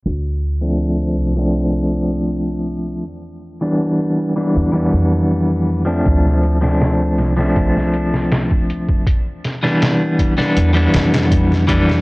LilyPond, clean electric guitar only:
\new Staff \with { instrumentName = "Clean electric guitar" } { \time 4/4 \key d \dorian \tempo 4 = 80 r8. <f a c' d'>4 <f a c' d'>2~ <f a c' d'>16 | r8. <e g b d'>4 <e g b d'>8 <e g b d'>4. <f a c' d'>16~ | <f a c' d'>8. <f a c' d'>4 <f a c' d'>2~ <f a c' d'>16 | r8. <e g b d'>4 <e g b d'>8 <e g b d'>4~ <e g b d'>16 <e g b d'>8 | }